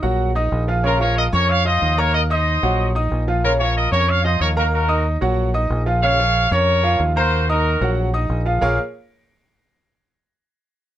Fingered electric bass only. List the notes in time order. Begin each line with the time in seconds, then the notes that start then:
0.03 A#1
0.52 A#1
1.33 F2
1.82 D#2
2.63 A#1
3.12 A#1
3.92 F2
4.41 D#2
5.22 A#1
5.70 A#1
6.51 F2
7.00 D#2
7.81 A#1
8.30 A#1
8.62 A#1